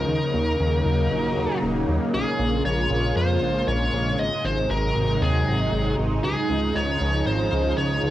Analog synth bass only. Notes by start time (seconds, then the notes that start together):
0.09 D#2
0.34 D#2
0.60 D#2
0.86 D#2
1.11 A#1
1.37 D#2
1.62 D#1
1.88 D#2
2.14 A#1
2.39 A#1
2.65 A#1
2.91 A#1
3.16 F2
3.42 A#1
3.68 A#1
3.93 A#1
4.19 G#1
4.45 G#1
4.70 G#1
4.96 G#1
5.21 D#2
5.47 G#1
5.73 G#1
5.98 G#1
6.24 C#2
6.50 C#2
6.75 C#2
7.01 C#2
7.27 G#1
7.52 C#2
7.78 C#2
8.03 C#2